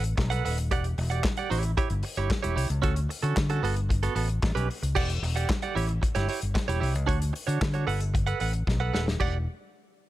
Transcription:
Already playing: A1
0.04 closed hi-hat
0.17 B1, muted clean electric guitar stroke, kick, snare, clap
0.30 A4 B4 F#5, closed hi-hat
0.45 D#1 A4 B4 F#5, open hi-hat
0.58 closed hi-hat
0.71 E1 G4 D5 F#5, kick, closed hi-hat
0.84 muted clean electric guitar stroke, closed hi-hat
0.98 E1, muted clean electric guitar stroke, open hi-hat
1.10 G4 D5 F#5, closed hi-hat
1.24 muted clean electric guitar stroke, kick, snare, clap
1.37 G4 D5 F#5, closed hi-hat
1.50 A1 E4 G4 C#5, open hi-hat
1.63 muted clean electric guitar stroke, closed hi-hat
1.77 E4 G4 C#5, kick, closed hi-hat
1.90 G1, muted clean electric guitar stroke, closed hi-hat
2.03 muted clean electric guitar stroke, open hi-hat
2.16 G1 E4 G4 C#5, closed hi-hat
2.30 muted clean electric guitar stroke, kick, snare, clap
2.43 E1 E4 G4 C#5, closed hi-hat
2.56 C2 E4 G4 C#5, open hi-hat
2.69 C#2, muted clean electric guitar stroke, closed hi-hat
2.82 D2 C#4 F#4 A4, kick, closed hi-hat
2.96 muted clean electric guitar stroke, closed hi-hat
3.09 muted clean electric guitar stroke, open hi-hat
3.23 D3 C#4 F#4 A4, closed hi-hat
3.37 D3, kick, snare, clap
3.49 C#4 F#4 A4, closed hi-hat
3.62 G1 B3 F#4 A4, open hi-hat
3.76 muted clean electric guitar stroke, closed hi-hat
3.89 muted clean electric guitar stroke, kick, closed hi-hat
4.03 B3 F#4 A4, closed hi-hat
4.15 A1 B3 F#4 A4, open hi-hat
4.29 muted clean electric guitar stroke, closed hi-hat
4.43 A1, muted clean electric guitar stroke, kick, snare, clap
4.55 B1 C#4 G4 B4, closed hi-hat
4.69 muted clean electric guitar stroke, open hi-hat
4.83 C#2, muted clean electric guitar stroke, closed hi-hat
4.95 E1 G4 D5 F#5, kick, crash
5.10 muted clean electric guitar stroke, closed hi-hat
5.22 E1, muted clean electric guitar stroke, open hi-hat
5.36 G4 D5 F#5, closed hi-hat
5.50 muted clean electric guitar stroke, kick, snare, clap
5.62 G4 D5 F#5, closed hi-hat
5.75 A1 E4 G4 C#5, open hi-hat
5.88 muted clean electric guitar stroke, closed hi-hat
6.02 muted clean electric guitar stroke, kick, closed hi-hat
6.15 G1 E4 G4 C#5, snare, closed hi-hat
6.29 E4 G4 C#5, open hi-hat
6.42 G1, closed hi-hat
6.54 muted clean electric guitar stroke, kick, snare, clap
6.68 E1 E4 G4 C#5, closed hi-hat
6.80 C2 E4 G4 C#5, open hi-hat
6.94 C#2, muted clean electric guitar stroke, closed hi-hat
7.06 D2 D4 F#4 C#5, kick, closed hi-hat
7.20 muted clean electric guitar stroke, closed hi-hat
7.33 muted clean electric guitar stroke, open hi-hat
7.47 D3 D4 F#4 C#5, closed hi-hat
7.61 D3, muted clean electric guitar stroke, kick, snare, clap
7.74 D4 F#4 C#5, closed hi-hat
7.87 G1 A4 B4 F#5, open hi-hat
8.00 muted clean electric guitar stroke, closed hi-hat
8.14 muted clean electric guitar stroke, kick, closed hi-hat
8.27 A4 B4 F#5, closed hi-hat
8.40 A1 A4 B4 F#5, open hi-hat
8.53 closed hi-hat
8.67 B1, muted clean electric guitar stroke, kick, snare
8.80 A4 B4 F#5
8.93 D#1 A4 B4 F#5, snare
9.07 muted clean electric guitar stroke, snare
9.20 E1 G4 D5 F#5, kick, crash

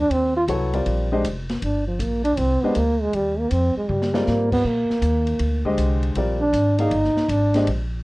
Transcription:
0.00 D4
0.10 D#2 C4, ride
0.37 F4
0.48 C2 F#3 B3 E4 A4 C#5, hi-hat pedal, ride
0.73 G3 C4 F4 A#4 D5, ride
0.86 A#1, ride
1.12 G#3 D4 G4 C5 D#5
1.24 F1, hi-hat pedal, ride
1.49 snare, ride
1.62 G1 D4, ride
1.87 F3
1.99 A#1 A#3, hi-hat pedal, ride
2.24 D4, ride
2.37 C2 C4, ride
2.61 G#3 B3 D4 G4 C5 D#5, muted upright bass stroke
2.75 D2 A#3, hi-hat pedal, ride
3.01 G#3
3.13 D#2 G3, ride
3.39 A#3
3.51 F2 C4, hi-hat pedal, ride
3.76 G#3, muted upright bass stroke
3.89 G2 G3, mid tom
4.02 snare
4.14 G3 G#3 C4 F4 A#4 D5, snare
4.27 G#2 A#3, snare, hi-hat pedal
4.52 B3, kick, crash
4.65 A#2 A#3
4.90 muted upright bass stroke, snare
5.02 D#2, hi-hat pedal, ride
5.27 ride
5.39 D2, ride
5.65 D3 G#3 G4 C5 D#5, kick
5.77 C2, hi-hat pedal, ride
6.03 ride
6.15 A#1 G3 C4 F4 A#4 D5, ride
6.41 D4
6.53 G#1, hi-hat pedal, ride
6.78 A#3 D#4 G#4 D5 F5, ride
6.91 G1, ride
7.04 snare
7.15 muted upright bass stroke, snare
7.28 G#1 D4, hi-hat pedal, ride
7.54 G#3 D4 G4 C5 D#5, snare, ride
7.67 A#1, ride

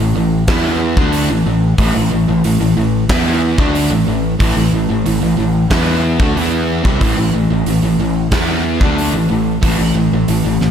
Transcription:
0.00 A1 A2 E3
0.16 A1 A2 E3
0.48 E2 E3 B3 E4, kick, snare, open hi-hat
0.97 D2 D3 A3 D4, kick
1.13 open hi-hat
1.31 A1 A2 E3
1.46 A1 A2 E3
1.78 A1 A2 E3, kick, open hi-hat
1.96 A1 A2 E3
2.12 A1 A2 E3
2.28 A1 A2 E3
2.44 A1 A2 E3, open hi-hat
2.61 A1 A2 E3
2.77 A1 A2 E3
3.09 E2 E3 B3 E4, kick, snare, open hi-hat
3.58 D2 D3 A3 D4, kick
3.75 open hi-hat
3.91 A1 A2 E3
4.08 A1 A2 E3
4.40 A1 A2 E3, kick, open hi-hat
4.56 A1 A2 E3
4.73 A1 A2 E3
4.90 A1 A2 E3
5.06 A1 A2 E3, open hi-hat
5.23 A1 A2 E3
5.38 A1 A2 E3
5.71 E2 E3 B3 E4, kick, snare, open hi-hat
6.20 D2 D3 A3, kick
6.36 E2 E3 B3 E4, open hi-hat
6.85 C2 C3 G3, kick
7.01 A1 A2 E3, kick, open hi-hat
7.18 A1 A2 E3
7.34 A1 A2 E3
7.50 A1 A2 E3
7.66 A1 A2 E3, open hi-hat
7.83 A1 A2 E3
7.99 A1 A2 E3
8.32 E2 E3 B3 E4, kick, snare, open hi-hat
8.81 D2 D3 A3 D4, kick
8.98 open hi-hat
9.13 A1 A2 E3
9.31 A1 A2 E3
9.63 A1 A2 E3, kick, open hi-hat
9.79 A1 A2 E3
9.95 A1 A2 E3
10.12 A1 A2 E3
10.28 A1 A2 E3, open hi-hat
10.45 A1 A2 E3
10.61 A1 A2 E3, snare

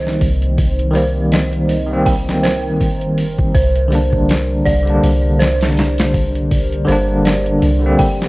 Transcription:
Already playing: C2 D#3 G3 A#3 C4 A#4 C5 D#5
0.07 snare
0.21 C2, kick, open hi-hat
0.42 closed hi-hat
0.58 kick, open hi-hat
0.79 closed hi-hat
0.91 D#3 G3 C5, open hi-hat
0.96 A#3
1.32 D#5, snare, open hi-hat
1.53 closed hi-hat
1.69 open hi-hat
1.86 D#3 G3
1.91 A#3 C4
2.06 G5, kick, open hi-hat
2.29 snare
2.43 C5, snare, open hi-hat
2.81 G1, kick, open hi-hat
3.01 closed hi-hat
3.18 open hi-hat
3.38 kick
3.54 C2 G3 D4 C5, kick, open hi-hat
3.76 closed hi-hat
3.88 D3 G3, open hi-hat
3.93 A#3 D4
4.13 kick
4.29 snare, open hi-hat
4.65 C2 D5, kick, open hi-hat
4.83 D3 G3
4.87 A#3 D4, closed hi-hat
5.03 C2, open hi-hat
5.39 C5, snare, open hi-hat
5.61 snare, open hi-hat
5.77 snare, open hi-hat
5.98 snare, open hi-hat
6.14 kick, open hi-hat
6.35 closed hi-hat
6.51 kick, open hi-hat
6.72 closed hi-hat
6.85 G1 D3 G3 C5, open hi-hat
6.89 A#3 D4
7.25 D5, snare, open hi-hat
7.46 closed hi-hat
7.62 C2, open hi-hat
7.79 D3 G3
7.84 A#3 C4
7.99 G5, kick, open hi-hat
8.22 snare

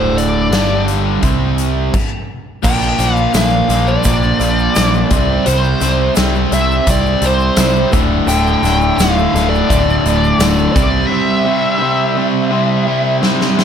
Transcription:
Already playing: D1 D2 A2 D3 C5
0.18 D5, closed hi-hat
0.49 G1 G2 D3 G3, snare, closed hi-hat, tambourine
0.88 closed hi-hat
1.22 C2 C3 G3 C4, kick, closed hi-hat
1.58 closed hi-hat
1.94 kick, crash
2.63 A#1 A#2 F3 A#3 G5, kick, crash, shaker
2.82 shaker
2.99 A#1 A#2 F3 A#3, snare, closed hi-hat, shaker
3.14 F5, shaker
3.33 A#1 A#2 F3 A#3 F5, snare, closed hi-hat, tambourine, shaker
3.53 shaker
3.69 A#1 A#2 F3 A#3, snare, closed hi-hat, shaker
3.87 D5, shaker
4.04 A#1 A#2 F3 A#3, kick, closed hi-hat, shaker
4.22 shaker
4.40 A#1 A#2 F3 A#3, closed hi-hat, shaker
4.58 shaker
4.75 A#1 A#2 F3 A#3, snare, closed hi-hat, tambourine, shaker
4.94 shaker
5.10 C2 C3 G3 C4, kick, closed hi-hat, shaker
5.45 C2 C3 G3 C4 C5, closed hi-hat, shaker
5.64 shaker
5.81 C2 C3 G3 C4, snare, closed hi-hat, shaker
6.16 C2 C3 G3 C4, snare, closed hi-hat, tambourine, shaker
6.35 shaker
6.51 C2 C3 G3 C4 E5, closed hi-hat, shaker
6.71 shaker
6.86 C2 C3 G3 C4, kick, closed hi-hat, shaker
6.90 D5
7.06 shaker
7.21 C2 C3 G3 C4 C5, closed hi-hat, shaker
7.40 shaker
7.57 C2 C3 G3 C4, snare, closed hi-hat, tambourine, shaker
7.75 shaker
7.92 D1 D2 A2 D3, kick, closed hi-hat, shaker
8.26 D1 D2 A2 D3 G5, closed hi-hat, shaker
8.47 shaker
8.62 D1 D2 A2 D3, snare, closed hi-hat, shaker
8.81 shaker
8.98 D1 D2 A2 D3 F5, snare, closed hi-hat, tambourine, shaker
9.18 shaker
9.33 D1 D2 A2 D3, snare, closed hi-hat, shaker
9.50 D5
9.54 shaker
9.69 D1 D2 A2 D3, kick, closed hi-hat, shaker
9.90 shaker
10.04 D1 D2 A2 D3, closed hi-hat, shaker
10.24 shaker
10.39 D1 D2 A2 D3, snare, closed hi-hat, tambourine, shaker
10.58 shaker
10.72 C2 C3 G3 C4 D5, kick, closed hi-hat, shaker
11.07 C3 G3 C4 E5
11.44 C3 G3 C4
11.78 C3 G3 C4
12.15 C3 G3 C4
12.50 C3 G3 C4
12.86 C3 G3 C4
13.22 C3 G3 C4, snare
13.41 snare
13.57 C3 G3 C4, snare

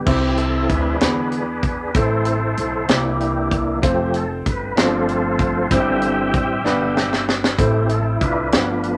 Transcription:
0.06 C2 C3 E3 C4 E4 G4 C5 E5, kick, crash
0.37 A4, closed hi-hat
0.69 D2 D4 G#4 B4, kick, closed hi-hat
1.00 E2 D3 E3 G#3 B3 D4 E4 G#4 B4, snare, closed hi-hat
1.32 closed hi-hat
1.63 kick, closed hi-hat
1.94 A1 A2 E3 A3 C4 E4 A4 C5, kick, closed hi-hat
2.25 closed hi-hat
2.57 B1, closed hi-hat
2.88 C2 C3 E3 A#3 C4 D4 E4 G4 A#4, snare, closed hi-hat
3.21 closed hi-hat
3.51 kick, closed hi-hat
3.82 F1 F3 A3 C4 F4 G4 A4 C5, kick, closed hi-hat
4.14 A4, closed hi-hat
4.46 G1 B4, kick, closed hi-hat
4.76 G1 G2 F3 A3 B3 C4 D4 F4 G4 A4 C5, snare, closed hi-hat
4.82 C4
5.09 closed hi-hat
5.39 kick, closed hi-hat
5.70 G1 G2 E3 G3 C4 E4 G4 C5 E5 G5, kick, closed hi-hat
6.02 closed hi-hat
6.34 A1, kick, closed hi-hat
6.64 G1 G2 B2 D3 G3 B3 D4 G4 B4, snare
6.97 snare
7.13 snare
7.29 snare
7.44 snare
7.58 A1 A2 E3 A3 C4 E4 G4 A4 C5, kick, closed hi-hat
7.89 A4, closed hi-hat
8.21 C2 D4 F4 B4, kick, closed hi-hat
8.52 G1 G2 F3 A3 B3 D4 F4 G4 B4, snare, closed hi-hat
8.83 closed hi-hat

